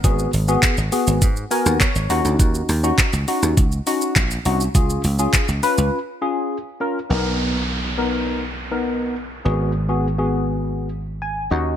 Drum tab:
HH |x-o-x-o-x-o-x-o-|x-o-x-o-x-o-x-o-|x-o-x-o---------|----------------|
SH |xxxxxxxxxxxxxxxx|xxxxxxxxxxxxxxxx|xxxxxxxx--------|----------------|
CP |----x-------x---|----x-------x---|----x-----------|----------------|
BD |o---o---o---o---|o---o---o---o---|o---o-----------|----------------|

HH |----------------|
SH |----------------|
CP |----------------|
BD |----------------|